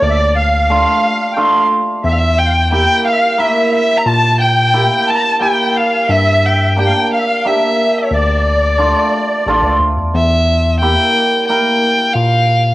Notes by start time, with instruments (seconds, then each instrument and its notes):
0.02 tine electric piano D2, accordion D5, violin D5
0.09 accordion E5
0.16 accordion D5
0.36 accordion F5, violin F5
0.70 hammered dulcimer A3 D4 F4
1.32 accordion G5
1.36 hammered dulcimer A3 D4 F4, accordion F5
2.03 tine electric piano E2, accordion E5
2.08 violin E5
2.12 violin F5
2.18 violin E5
2.39 violin G5, accordion G5
2.45 accordion F5
2.52 accordion G5
2.71 hammered dulcimer A#3 E4 G4, accordion G5, violin G5
3.05 accordion F5, violin F5
3.12 accordion E5
3.18 accordion F5
3.37 hammered dulcimer A#3 E4 A#4, accordion E5, violin E5
3.74 violin E5
3.97 violin A#5
4.05 tine electric piano A#2, accordion A5, violin A5
4.40 accordion G5, violin G5
4.73 hammered dulcimer A#3 E4 G4
4.90 accordion G5
5.07 accordion A5, violin A5
5.15 accordion A#5
5.22 accordion A5
5.35 accordion A5
5.40 hammered dulcimer A#3 E4 G4, accordion G5, violin G5
5.75 accordion F5, violin F5
6.08 tine electric piano G2, accordion E5, violin E5
6.46 violin G5
6.76 hammered dulcimer A#3 D4 G4, accordion G5
6.80 violin G5
6.86 accordion F5
6.91 accordion G5
7.11 accordion F5, violin F5
7.17 accordion E5
7.26 accordion F5
7.45 hammered dulcimer A#3 D4 G4, accordion E5, violin E5
7.98 violin C#5
8.11 tine electric piano D2, accordion D5
8.16 violin D5
8.78 hammered dulcimer A3 D4 F4
9.46 tine electric piano A1, hammered dulcimer A3 D4 F4
9.63 tine electric piano C#2
9.80 tine electric piano D2
9.97 tine electric piano E2
10.14 tine electric piano E2, violin E5
10.80 hammered dulcimer A#3 E4 G4, violin G5
11.47 hammered dulcimer A#3 E4 A#4, violin G5
12.14 tine electric piano A#2, violin F5